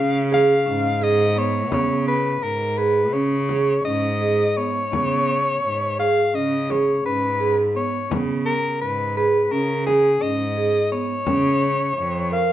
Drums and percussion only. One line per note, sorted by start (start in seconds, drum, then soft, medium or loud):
0.32 frame drum soft
1.72 frame drum medium
3.49 frame drum soft
3.85 frame drum soft
4.93 frame drum soft
5.99 frame drum soft
6.70 frame drum soft
7.05 frame drum soft
7.76 frame drum soft
8.11 frame drum medium
9.17 frame drum soft
9.87 frame drum soft
10.22 frame drum soft
10.92 frame drum soft
11.27 frame drum medium
12.32 frame drum soft